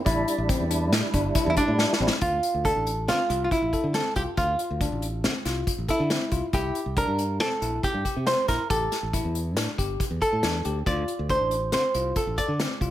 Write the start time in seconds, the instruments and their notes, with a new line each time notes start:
0.05 fingered electric bass A1, tonewheel organ G3 D4 E4, tine electric piano E4, kick, closed hi-hat
0.28 closed hi-hat
0.38 fingered electric bass A1
0.49 tine electric piano C4, kick, closed hi-hat
0.60 fingered electric bass E2
0.71 tine electric piano D4, closed hi-hat
0.92 fingered electric bass A2, snare, closed hi-hat
1.14 fingered electric bass G1, tine electric piano D4, kick, closed hi-hat
1.35 tine electric piano E4, kick, closed hi-hat
1.46 fingered electric bass E2, hollow-body jazz guitar E4
1.57 hollow-body jazz guitar D4, kick, closed hi-hat
1.68 fingered electric bass A2
1.79 tine electric piano D4, snare
1.93 snare
2.00 fingered electric bass A1, tine electric piano C4
2.07 snare
2.21 fingered electric bass D2, tine electric piano F4, hollow-body jazz guitar F4, kick, closed hi-hat
2.43 closed hi-hat
2.54 fingered electric bass D2
2.65 tine electric piano D4, hollow-body jazz guitar A4, kick, closed hi-hat
2.76 fingered electric bass A1
2.87 closed hi-hat
3.08 fingered electric bass D3, tine electric piano C4, hollow-body jazz guitar F4, snare, closed hi-hat
3.30 fingered electric bass C2, tine electric piano F4, closed hi-hat
3.44 hollow-body jazz guitar F4
3.51 hollow-body jazz guitar E4, kick, closed hi-hat
3.62 fingered electric bass A1
3.73 tine electric piano A4, kick, closed hi-hat
3.84 fingered electric bass D3
3.94 tine electric piano C4, hollow-body jazz guitar A4, snare, closed hi-hat
4.16 fingered electric bass C2, tine electric piano F4, hollow-body jazz guitar G4, kick, closed hi-hat
4.37 fingered electric bass D2, hollow-body jazz guitar F4, tine electric piano F4, kick, closed hi-hat
4.59 closed hi-hat
4.70 fingered electric bass D2
4.81 tine electric piano D4, kick, closed hi-hat
4.92 fingered electric bass A1
5.02 closed hi-hat
5.24 fingered electric bass D3, tine electric piano C4, snare, closed hi-hat
5.45 fingered electric bass C2, tine electric piano F4, snare, closed hi-hat
5.67 kick, closed hi-hat
5.78 fingered electric bass A1
5.88 hollow-body jazz guitar E4, tine electric piano A4, kick, closed hi-hat
6.00 fingered electric bass D3
6.10 tine electric piano C4, snare, closed hi-hat
6.32 fingered electric bass C2, tine electric piano F4, kick, closed hi-hat
6.53 fingered electric bass C2, tine electric piano E4, hollow-body jazz guitar G4, kick, closed hi-hat
6.75 closed hi-hat
6.86 fingered electric bass C2
6.97 tine electric piano D4, hollow-body jazz guitar A#4, kick, closed hi-hat
7.07 fingered electric bass G2
7.18 closed hi-hat
7.40 fingered electric bass C3, tine electric piano C4, hollow-body jazz guitar A4, snare, closed hi-hat
7.62 fingered electric bass A#1, tine electric piano E4, closed hi-hat
7.83 hollow-body jazz guitar G4, kick, closed hi-hat
7.94 fingered electric bass G2
8.05 tine electric piano G4, kick, closed hi-hat
8.16 fingered electric bass C3
8.27 tine electric piano C4, hollow-body jazz guitar C5, snare, closed hi-hat
8.48 fingered electric bass A#1, tine electric piano E4, hollow-body jazz guitar A#4, kick, snare, closed hi-hat
8.70 fingered electric bass A1, tine electric piano G4, hollow-body jazz guitar A4, kick, closed hi-hat
8.92 snare, closed hi-hat
9.03 fingered electric bass A1
9.13 tine electric piano E4, kick, closed hi-hat
9.25 fingered electric bass E2
9.35 closed hi-hat
9.57 fingered electric bass A2, tine electric piano D4, snare, closed hi-hat
9.78 fingered electric bass G1, tine electric piano G4, kick, closed hi-hat
10.00 kick, closed hi-hat
10.11 fingered electric bass E2
10.22 hollow-body jazz guitar A4, tine electric piano A4, kick, closed hi-hat
10.33 fingered electric bass A2
10.43 fingered electric bass E2, tine electric piano D4, snare, closed hi-hat
10.65 fingered electric bass D2, tine electric piano G4, closed hi-hat
10.86 fingered electric bass D2, tine electric piano F4, hollow-body jazz guitar D5, kick, closed hi-hat
11.08 closed hi-hat
11.19 fingered electric bass D2
11.29 tine electric piano D4, hollow-body jazz guitar C5, kick, closed hi-hat
11.41 fingered electric bass A1
11.51 closed hi-hat
11.72 fingered electric bass D3, tine electric piano C4, hollow-body jazz guitar C5, snare, closed hi-hat
11.94 fingered electric bass C2, tine electric piano F4, closed hi-hat
12.16 hollow-body jazz guitar A4, kick, closed hi-hat
12.27 fingered electric bass A1
12.38 tine electric piano A4, hollow-body jazz guitar D5, kick, closed hi-hat
12.48 fingered electric bass D3
12.60 tine electric piano C4, snare, closed hi-hat
12.81 fingered electric bass C2, tine electric piano F4, kick, closed hi-hat